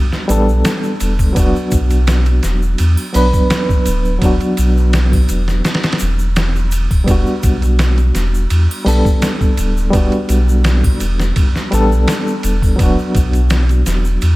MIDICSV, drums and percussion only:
0, 0, Header, 1, 2, 480
1, 0, Start_track
1, 0, Key_signature, 1, "minor"
1, 0, Tempo, 714286
1, 915, Time_signature, 4, 2, 24, 8
1, 9649, End_track
2, 0, Start_track
2, 0, Title_t, "Drums"
2, 84, Note_on_c, 9, 38, 38
2, 85, Note_on_c, 9, 82, 26
2, 151, Note_off_c, 9, 38, 0
2, 152, Note_off_c, 9, 82, 0
2, 195, Note_on_c, 9, 51, 57
2, 201, Note_on_c, 9, 82, 93
2, 262, Note_off_c, 9, 51, 0
2, 268, Note_off_c, 9, 82, 0
2, 328, Note_on_c, 9, 82, 40
2, 395, Note_off_c, 9, 82, 0
2, 434, Note_on_c, 9, 51, 80
2, 436, Note_on_c, 9, 82, 56
2, 437, Note_on_c, 9, 38, 112
2, 501, Note_off_c, 9, 51, 0
2, 503, Note_off_c, 9, 82, 0
2, 504, Note_off_c, 9, 38, 0
2, 561, Note_on_c, 9, 82, 23
2, 628, Note_off_c, 9, 82, 0
2, 674, Note_on_c, 9, 51, 65
2, 675, Note_on_c, 9, 82, 83
2, 742, Note_off_c, 9, 51, 0
2, 742, Note_off_c, 9, 82, 0
2, 800, Note_on_c, 9, 36, 83
2, 802, Note_on_c, 9, 81, 54
2, 802, Note_on_c, 9, 82, 37
2, 867, Note_off_c, 9, 36, 0
2, 869, Note_off_c, 9, 81, 0
2, 869, Note_off_c, 9, 82, 0
2, 913, Note_on_c, 9, 36, 104
2, 914, Note_on_c, 9, 51, 78
2, 918, Note_on_c, 9, 82, 58
2, 981, Note_off_c, 9, 36, 0
2, 981, Note_off_c, 9, 51, 0
2, 985, Note_off_c, 9, 82, 0
2, 1047, Note_on_c, 9, 82, 21
2, 1114, Note_off_c, 9, 82, 0
2, 1152, Note_on_c, 9, 82, 81
2, 1153, Note_on_c, 9, 36, 88
2, 1155, Note_on_c, 9, 51, 59
2, 1219, Note_off_c, 9, 82, 0
2, 1220, Note_off_c, 9, 36, 0
2, 1222, Note_off_c, 9, 51, 0
2, 1279, Note_on_c, 9, 82, 39
2, 1281, Note_on_c, 9, 51, 43
2, 1346, Note_off_c, 9, 82, 0
2, 1348, Note_off_c, 9, 51, 0
2, 1393, Note_on_c, 9, 51, 82
2, 1395, Note_on_c, 9, 82, 48
2, 1396, Note_on_c, 9, 38, 106
2, 1460, Note_off_c, 9, 51, 0
2, 1462, Note_off_c, 9, 82, 0
2, 1463, Note_off_c, 9, 38, 0
2, 1516, Note_on_c, 9, 82, 24
2, 1520, Note_on_c, 9, 51, 42
2, 1583, Note_off_c, 9, 82, 0
2, 1587, Note_off_c, 9, 51, 0
2, 1631, Note_on_c, 9, 51, 63
2, 1634, Note_on_c, 9, 38, 36
2, 1637, Note_on_c, 9, 82, 79
2, 1698, Note_off_c, 9, 51, 0
2, 1701, Note_off_c, 9, 38, 0
2, 1705, Note_off_c, 9, 82, 0
2, 1763, Note_on_c, 9, 82, 36
2, 1830, Note_off_c, 9, 82, 0
2, 1870, Note_on_c, 9, 51, 82
2, 1873, Note_on_c, 9, 82, 46
2, 1937, Note_off_c, 9, 51, 0
2, 1940, Note_off_c, 9, 82, 0
2, 1999, Note_on_c, 9, 81, 67
2, 2000, Note_on_c, 9, 82, 28
2, 2066, Note_off_c, 9, 81, 0
2, 2067, Note_off_c, 9, 82, 0
2, 2111, Note_on_c, 9, 46, 66
2, 2115, Note_on_c, 9, 82, 92
2, 2179, Note_off_c, 9, 46, 0
2, 2182, Note_off_c, 9, 82, 0
2, 2240, Note_on_c, 9, 36, 92
2, 2241, Note_on_c, 9, 82, 38
2, 2307, Note_off_c, 9, 36, 0
2, 2308, Note_off_c, 9, 82, 0
2, 2353, Note_on_c, 9, 51, 84
2, 2356, Note_on_c, 9, 38, 116
2, 2357, Note_on_c, 9, 82, 48
2, 2420, Note_off_c, 9, 51, 0
2, 2423, Note_off_c, 9, 38, 0
2, 2424, Note_off_c, 9, 82, 0
2, 2480, Note_on_c, 9, 36, 89
2, 2486, Note_on_c, 9, 82, 24
2, 2547, Note_off_c, 9, 36, 0
2, 2554, Note_off_c, 9, 82, 0
2, 2591, Note_on_c, 9, 51, 65
2, 2596, Note_on_c, 9, 82, 91
2, 2658, Note_off_c, 9, 51, 0
2, 2663, Note_off_c, 9, 82, 0
2, 2721, Note_on_c, 9, 82, 38
2, 2788, Note_off_c, 9, 82, 0
2, 2833, Note_on_c, 9, 36, 103
2, 2833, Note_on_c, 9, 51, 82
2, 2843, Note_on_c, 9, 82, 53
2, 2900, Note_off_c, 9, 36, 0
2, 2900, Note_off_c, 9, 51, 0
2, 2911, Note_off_c, 9, 82, 0
2, 2960, Note_on_c, 9, 82, 23
2, 2961, Note_on_c, 9, 51, 39
2, 3027, Note_off_c, 9, 82, 0
2, 3028, Note_off_c, 9, 51, 0
2, 3072, Note_on_c, 9, 51, 67
2, 3078, Note_on_c, 9, 82, 88
2, 3139, Note_off_c, 9, 51, 0
2, 3145, Note_off_c, 9, 82, 0
2, 3208, Note_on_c, 9, 82, 36
2, 3275, Note_off_c, 9, 82, 0
2, 3314, Note_on_c, 9, 51, 86
2, 3316, Note_on_c, 9, 38, 110
2, 3323, Note_on_c, 9, 82, 48
2, 3381, Note_off_c, 9, 51, 0
2, 3384, Note_off_c, 9, 38, 0
2, 3390, Note_off_c, 9, 82, 0
2, 3440, Note_on_c, 9, 36, 88
2, 3449, Note_on_c, 9, 81, 66
2, 3449, Note_on_c, 9, 82, 26
2, 3507, Note_off_c, 9, 36, 0
2, 3516, Note_off_c, 9, 81, 0
2, 3517, Note_off_c, 9, 82, 0
2, 3553, Note_on_c, 9, 51, 60
2, 3555, Note_on_c, 9, 82, 84
2, 3621, Note_off_c, 9, 51, 0
2, 3622, Note_off_c, 9, 82, 0
2, 3682, Note_on_c, 9, 38, 47
2, 3688, Note_on_c, 9, 82, 35
2, 3749, Note_off_c, 9, 38, 0
2, 3755, Note_off_c, 9, 82, 0
2, 3794, Note_on_c, 9, 51, 61
2, 3796, Note_on_c, 9, 38, 82
2, 3797, Note_on_c, 9, 82, 47
2, 3860, Note_off_c, 9, 51, 0
2, 3860, Note_on_c, 9, 51, 60
2, 3863, Note_off_c, 9, 38, 0
2, 3863, Note_on_c, 9, 38, 84
2, 3864, Note_off_c, 9, 82, 0
2, 3921, Note_on_c, 9, 82, 26
2, 3922, Note_off_c, 9, 51, 0
2, 3922, Note_on_c, 9, 51, 60
2, 3924, Note_off_c, 9, 38, 0
2, 3924, Note_on_c, 9, 38, 82
2, 3981, Note_off_c, 9, 51, 0
2, 3981, Note_on_c, 9, 51, 64
2, 3984, Note_off_c, 9, 38, 0
2, 3984, Note_on_c, 9, 38, 76
2, 3988, Note_off_c, 9, 82, 0
2, 4026, Note_on_c, 9, 82, 85
2, 4036, Note_off_c, 9, 51, 0
2, 4036, Note_on_c, 9, 51, 56
2, 4051, Note_off_c, 9, 38, 0
2, 4093, Note_off_c, 9, 82, 0
2, 4103, Note_off_c, 9, 51, 0
2, 4159, Note_on_c, 9, 82, 39
2, 4226, Note_off_c, 9, 82, 0
2, 4274, Note_on_c, 9, 82, 53
2, 4275, Note_on_c, 9, 51, 82
2, 4278, Note_on_c, 9, 38, 109
2, 4341, Note_off_c, 9, 82, 0
2, 4342, Note_off_c, 9, 51, 0
2, 4345, Note_off_c, 9, 38, 0
2, 4407, Note_on_c, 9, 82, 23
2, 4474, Note_off_c, 9, 82, 0
2, 4512, Note_on_c, 9, 82, 91
2, 4517, Note_on_c, 9, 51, 66
2, 4580, Note_off_c, 9, 82, 0
2, 4584, Note_off_c, 9, 51, 0
2, 4642, Note_on_c, 9, 36, 85
2, 4643, Note_on_c, 9, 81, 54
2, 4644, Note_on_c, 9, 82, 38
2, 4709, Note_off_c, 9, 36, 0
2, 4710, Note_off_c, 9, 81, 0
2, 4711, Note_off_c, 9, 82, 0
2, 4754, Note_on_c, 9, 36, 101
2, 4755, Note_on_c, 9, 51, 79
2, 4758, Note_on_c, 9, 82, 52
2, 4822, Note_off_c, 9, 36, 0
2, 4822, Note_off_c, 9, 51, 0
2, 4825, Note_off_c, 9, 82, 0
2, 4883, Note_on_c, 9, 82, 23
2, 4950, Note_off_c, 9, 82, 0
2, 4994, Note_on_c, 9, 36, 86
2, 4994, Note_on_c, 9, 82, 86
2, 4995, Note_on_c, 9, 51, 59
2, 5061, Note_off_c, 9, 82, 0
2, 5062, Note_off_c, 9, 36, 0
2, 5062, Note_off_c, 9, 51, 0
2, 5122, Note_on_c, 9, 51, 43
2, 5127, Note_on_c, 9, 82, 33
2, 5189, Note_off_c, 9, 51, 0
2, 5195, Note_off_c, 9, 82, 0
2, 5234, Note_on_c, 9, 51, 82
2, 5236, Note_on_c, 9, 38, 104
2, 5238, Note_on_c, 9, 82, 47
2, 5301, Note_off_c, 9, 51, 0
2, 5304, Note_off_c, 9, 38, 0
2, 5306, Note_off_c, 9, 82, 0
2, 5361, Note_on_c, 9, 51, 38
2, 5363, Note_on_c, 9, 82, 25
2, 5428, Note_off_c, 9, 51, 0
2, 5430, Note_off_c, 9, 82, 0
2, 5475, Note_on_c, 9, 51, 59
2, 5477, Note_on_c, 9, 38, 35
2, 5480, Note_on_c, 9, 82, 85
2, 5542, Note_off_c, 9, 51, 0
2, 5544, Note_off_c, 9, 38, 0
2, 5547, Note_off_c, 9, 82, 0
2, 5608, Note_on_c, 9, 82, 40
2, 5675, Note_off_c, 9, 82, 0
2, 5713, Note_on_c, 9, 82, 48
2, 5714, Note_on_c, 9, 51, 83
2, 5781, Note_off_c, 9, 82, 0
2, 5782, Note_off_c, 9, 51, 0
2, 5852, Note_on_c, 9, 82, 26
2, 5854, Note_on_c, 9, 81, 77
2, 5919, Note_off_c, 9, 82, 0
2, 5922, Note_off_c, 9, 81, 0
2, 5954, Note_on_c, 9, 46, 68
2, 5964, Note_on_c, 9, 82, 78
2, 6022, Note_off_c, 9, 46, 0
2, 6031, Note_off_c, 9, 82, 0
2, 6081, Note_on_c, 9, 36, 92
2, 6089, Note_on_c, 9, 82, 38
2, 6148, Note_off_c, 9, 36, 0
2, 6156, Note_off_c, 9, 82, 0
2, 6196, Note_on_c, 9, 51, 84
2, 6198, Note_on_c, 9, 38, 114
2, 6198, Note_on_c, 9, 82, 53
2, 6263, Note_off_c, 9, 51, 0
2, 6265, Note_off_c, 9, 82, 0
2, 6266, Note_off_c, 9, 38, 0
2, 6321, Note_on_c, 9, 36, 96
2, 6325, Note_on_c, 9, 82, 24
2, 6389, Note_off_c, 9, 36, 0
2, 6392, Note_off_c, 9, 82, 0
2, 6434, Note_on_c, 9, 51, 66
2, 6438, Note_on_c, 9, 82, 84
2, 6501, Note_off_c, 9, 51, 0
2, 6505, Note_off_c, 9, 82, 0
2, 6566, Note_on_c, 9, 82, 34
2, 6634, Note_off_c, 9, 82, 0
2, 6674, Note_on_c, 9, 36, 101
2, 6674, Note_on_c, 9, 51, 86
2, 6681, Note_on_c, 9, 82, 51
2, 6741, Note_off_c, 9, 51, 0
2, 6742, Note_off_c, 9, 36, 0
2, 6748, Note_off_c, 9, 82, 0
2, 6801, Note_on_c, 9, 51, 42
2, 6803, Note_on_c, 9, 82, 22
2, 6868, Note_off_c, 9, 51, 0
2, 6871, Note_off_c, 9, 82, 0
2, 6913, Note_on_c, 9, 51, 59
2, 6919, Note_on_c, 9, 82, 67
2, 6981, Note_off_c, 9, 51, 0
2, 6986, Note_off_c, 9, 82, 0
2, 7047, Note_on_c, 9, 82, 36
2, 7114, Note_off_c, 9, 82, 0
2, 7152, Note_on_c, 9, 51, 84
2, 7155, Note_on_c, 9, 38, 114
2, 7157, Note_on_c, 9, 82, 41
2, 7219, Note_off_c, 9, 51, 0
2, 7222, Note_off_c, 9, 38, 0
2, 7224, Note_off_c, 9, 82, 0
2, 7281, Note_on_c, 9, 36, 84
2, 7283, Note_on_c, 9, 82, 23
2, 7287, Note_on_c, 9, 81, 74
2, 7349, Note_off_c, 9, 36, 0
2, 7350, Note_off_c, 9, 82, 0
2, 7354, Note_off_c, 9, 81, 0
2, 7394, Note_on_c, 9, 51, 67
2, 7394, Note_on_c, 9, 82, 75
2, 7461, Note_off_c, 9, 51, 0
2, 7461, Note_off_c, 9, 82, 0
2, 7523, Note_on_c, 9, 38, 51
2, 7528, Note_on_c, 9, 82, 36
2, 7591, Note_off_c, 9, 38, 0
2, 7595, Note_off_c, 9, 82, 0
2, 7633, Note_on_c, 9, 51, 85
2, 7635, Note_on_c, 9, 36, 105
2, 7641, Note_on_c, 9, 82, 43
2, 7701, Note_off_c, 9, 51, 0
2, 7702, Note_off_c, 9, 36, 0
2, 7708, Note_off_c, 9, 82, 0
2, 7766, Note_on_c, 9, 38, 41
2, 7769, Note_on_c, 9, 82, 23
2, 7833, Note_off_c, 9, 38, 0
2, 7836, Note_off_c, 9, 82, 0
2, 7875, Note_on_c, 9, 51, 59
2, 7884, Note_on_c, 9, 82, 81
2, 7942, Note_off_c, 9, 51, 0
2, 7951, Note_off_c, 9, 82, 0
2, 8011, Note_on_c, 9, 82, 36
2, 8078, Note_off_c, 9, 82, 0
2, 8115, Note_on_c, 9, 51, 84
2, 8118, Note_on_c, 9, 38, 105
2, 8123, Note_on_c, 9, 82, 52
2, 8182, Note_off_c, 9, 51, 0
2, 8185, Note_off_c, 9, 38, 0
2, 8191, Note_off_c, 9, 82, 0
2, 8248, Note_on_c, 9, 82, 22
2, 8315, Note_off_c, 9, 82, 0
2, 8355, Note_on_c, 9, 51, 62
2, 8362, Note_on_c, 9, 82, 98
2, 8422, Note_off_c, 9, 51, 0
2, 8429, Note_off_c, 9, 82, 0
2, 8483, Note_on_c, 9, 36, 86
2, 8487, Note_on_c, 9, 81, 49
2, 8491, Note_on_c, 9, 82, 35
2, 8550, Note_off_c, 9, 36, 0
2, 8554, Note_off_c, 9, 81, 0
2, 8558, Note_off_c, 9, 82, 0
2, 8595, Note_on_c, 9, 36, 106
2, 8595, Note_on_c, 9, 51, 78
2, 8600, Note_on_c, 9, 82, 48
2, 8662, Note_off_c, 9, 36, 0
2, 8662, Note_off_c, 9, 51, 0
2, 8668, Note_off_c, 9, 82, 0
2, 8728, Note_on_c, 9, 82, 21
2, 8795, Note_off_c, 9, 82, 0
2, 8834, Note_on_c, 9, 51, 64
2, 8835, Note_on_c, 9, 36, 95
2, 8846, Note_on_c, 9, 82, 78
2, 8901, Note_off_c, 9, 51, 0
2, 8902, Note_off_c, 9, 36, 0
2, 8913, Note_off_c, 9, 82, 0
2, 8960, Note_on_c, 9, 51, 41
2, 8967, Note_on_c, 9, 82, 33
2, 9027, Note_off_c, 9, 51, 0
2, 9034, Note_off_c, 9, 82, 0
2, 9071, Note_on_c, 9, 82, 45
2, 9073, Note_on_c, 9, 51, 88
2, 9076, Note_on_c, 9, 38, 107
2, 9138, Note_off_c, 9, 82, 0
2, 9140, Note_off_c, 9, 51, 0
2, 9143, Note_off_c, 9, 38, 0
2, 9202, Note_on_c, 9, 51, 39
2, 9206, Note_on_c, 9, 82, 25
2, 9269, Note_off_c, 9, 51, 0
2, 9274, Note_off_c, 9, 82, 0
2, 9314, Note_on_c, 9, 51, 64
2, 9317, Note_on_c, 9, 38, 39
2, 9317, Note_on_c, 9, 82, 85
2, 9382, Note_off_c, 9, 51, 0
2, 9384, Note_off_c, 9, 38, 0
2, 9384, Note_off_c, 9, 82, 0
2, 9440, Note_on_c, 9, 82, 35
2, 9507, Note_off_c, 9, 82, 0
2, 9553, Note_on_c, 9, 82, 47
2, 9556, Note_on_c, 9, 51, 82
2, 9620, Note_off_c, 9, 82, 0
2, 9623, Note_off_c, 9, 51, 0
2, 9649, End_track
0, 0, End_of_file